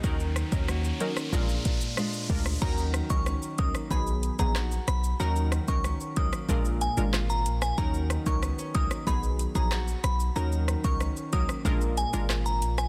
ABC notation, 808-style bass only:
X:1
M:4/4
L:1/16
Q:1/4=93
K:Ebm
V:1 name="808-style bass" clef=bass
E,,3 E,,3 z2 B,,,2 z4 =D,,2 | E,,3 D,,2 z D,, z =B,,,3 _B,,,3 =B,,,2 | E,,3 D,,2 z D,, z B,,,3 A,,,3 B,,,2 | E,,3 D,,2 z D,, z =B,,,3 _B,,,3 =B,,,2 |
E,,3 D,,2 z D,, z B,,,3 A,,,3 B,,,2 |]